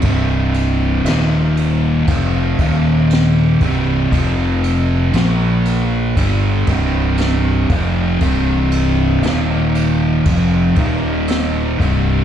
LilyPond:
<<
  \new Staff \with { instrumentName = "Distorted electric guitar" } { \clef bass \time 4/4 \key c \minor \tempo 4 = 59 <c, g, c>4 <ees, bes, ees>4 <f, c f>8 <ees, bes, ees>4 <c, g, c>8 | <f, c f>4 <bes, f bes>4 <g, d g>8 <c, g, c>4 <f, c f>8 | <c, g, c>4 <ees, bes, ees>4 <f, c f>8 <ees, bes, ees>4 <c, g, c>8 | }
  \new Staff \with { instrumentName = "Distorted electric guitar" } { \clef bass \time 4/4 \key c \minor <c, g, c>4 <ees, bes, ees>4 <f, c f>8 <ees, bes, ees>4 <c, g, c>8 | <f, c f>4 <bes, f bes>4 <g, d g>8 <c, g, c>4 <f, c f>8 | <c, g, c>4 <ees, bes, ees>4 <f, c f>8 <ees, bes, ees>4 <c, g, c>8 | }
  \new Staff \with { instrumentName = "Overdriven electric guitar" } { \clef bass \time 4/4 \key c \minor <c, g, c>4 <ees, bes, ees>4 <f, c f>8 <ees, bes, ees>4 <c, g, c>8 | <f, c f>4 <bes, f bes>4 <g, d g>8 <c, g, c>4 <f, c f>8 | <c, g, c>4 <ees, bes, ees>4 <f, c f>8 <ees, bes, ees>4 <c, g, c>8 | }
  \new Staff \with { instrumentName = "Fingered electric bass" } { \clef bass \time 4/4 \key c \minor c,,4 ees,,4 f,,8 ees,,4 c,,8 | f,,4 bes,,4 g,,8 c,,4 f,,8 | c,,4 ees,,4 f,,8 ees,,4 c,,8 | }
  \new DrumStaff \with { instrumentName = "Drums" } \drummode { \time 4/4 <cymc bd>8 cymc8 <cymc sn>8 cymc8 <cymc bd>8 <cymc bd>8 <cymc sn>8 <cymc bd>8 | <cymc bd>8 cymc8 <cymc sn>8 cymc8 <cymc bd>8 <cymc bd>8 <cymc sn>8 <cymc bd>8 | <cymc bd>8 cymc8 <cymc sn>8 cymc8 <cymc bd>8 <cymc bd>8 <cymc sn>8 <cymc bd>8 | }
>>